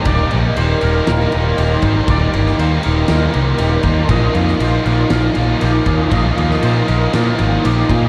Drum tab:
RD |x-x-x-x-x-x-x-x-|x-x-x-x-x-x-x-x-|x-x-x-x-x-x-x-x-|x-x-x-x-x-x-x-x-|
SD |--------o-------|---o----o-------|---o----o-------|---o----o-------|
BD |o-------------o-|o-------------o-|o-------------o-|o-------------o-|